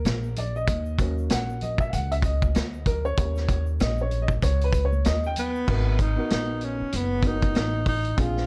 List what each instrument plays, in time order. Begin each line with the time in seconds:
Already playing: upright piano A#4
0.05 upright bass A#1, snare, closed hi-hat, shaker
0.24 shaker
0.36 upright piano D5, closed hi-hat, low conga, shaker
0.56 upright piano D#5, shaker
0.67 upright bass D#2, kick, closed hi-hat, shaker
0.86 shaker
0.99 upright piano F#3 A#3 C#4, kick, closed hi-hat, shaker
1.18 shaker
1.30 upright bass A#1, upright piano F#5, snare, closed hi-hat, shaker
1.50 shaker
1.61 upright piano D#5, closed hi-hat, low conga, shaker
1.78 upright piano E5, kick, shaker
1.90 upright bass C#2, upright piano F5 F#5, closed hi-hat, shaker
2.12 upright piano E5, closed hi-hat, shaker
2.22 upright piano D#5, kick, closed hi-hat, shaker
2.42 kick, high conga, shaker
2.55 upright bass D2, snare, closed hi-hat, shaker
2.74 shaker
2.86 upright piano A#4, kick, closed hi-hat, low conga, shaker
3.05 upright piano C#5, shaker
3.17 upright bass D#2, upright piano G3 C#4 A#4, kick, closed hi-hat, shaker
3.35 snare, shaker
3.48 kick, closed hi-hat, shaker
3.66 shaker
3.80 upright bass A#1, upright piano D#5, snare, closed hi-hat, shaker
3.98 upright piano C#5, shaker
4.11 closed hi-hat, low conga, shaker
4.22 upright piano D#5
4.28 kick, shaker
4.42 upright bass C#2, upright piano C#5, kick, closed hi-hat, shaker
4.61 upright piano B4, closed hi-hat, shaker
4.73 kick, closed hi-hat, shaker
4.85 upright piano C#5
4.93 high conga, shaker
5.05 upright bass D#2, upright piano D#5, snare, closed hi-hat, shaker
5.24 upright piano G5, shaker
5.36 tenor saxophone B3, closed hi-hat, low conga, shaker
5.56 shaker
5.66 upright bass G#1, upright piano B3 D#4 F#4 A#4, kick, crash
5.99 tenor saxophone D#4, kick, closed hi-hat
6.16 upright piano B3 D#4 F#4 A#4
6.30 upright bass A#1, tenor saxophone D#4, snare, closed hi-hat
6.61 tenor saxophone C#4, closed hi-hat
6.80 muted upright bass stroke
6.92 upright bass F#1, tenor saxophone B3, closed hi-hat
7.23 upright piano B3 D#4 F#4 A#4, tenor saxophone D#4, kick, closed hi-hat
7.42 kick, closed hi-hat
7.55 upright bass A1, snare, closed hi-hat
7.86 tenor saxophone D#4, kick, open hi-hat
8.05 closed hi-hat
8.16 upright bass A#1, upright piano C4 D4 F4 G#4, tenor saxophone F4, kick, closed hi-hat
8.37 snare